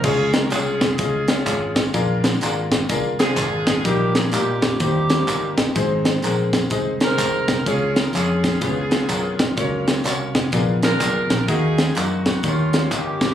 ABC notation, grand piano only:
X:1
M:4/4
L:1/8
Q:"Swing" 1/4=126
K:Db
V:1 name="Grand piano"
[A,DFAd] z [A,DFAd] z [A,DFAe] [A,DFAd] [A,DFAd] z | [B,=DFAB] z [B,DFAB] z [B,DFAB] [B,DFAc] [B,DFAB] z | [=G,B,E=GB] z [G,B,EGB] z [G,B,EGc] [G,B,EGc] [G,B,EGB] z | [A,CEAc] z [A,CEAB] z [A,CEAe] [A,CEAc] [A,CEAc] z |
[A,DFAd] z [A,DFAd] z [_CDFA_c] [CDFAc] [CDFAB] z | [G,B,DBd] z [B,DGBd] z [_C=DFAB] [CDFAB] [CDFAB] z | [B,EGBe] z [B,EGBe] z [EF=GBd] [EFGBd] [EFGBe] z |]
V:2 name="Grand piano" clef=bass
D,3 z4 z | B,,3 z4 z | B,,3 z4 z | A,,3 z4 z |
D,3 z D,3 z | D,3 z B,,3 z | E,3 z E,3 z |]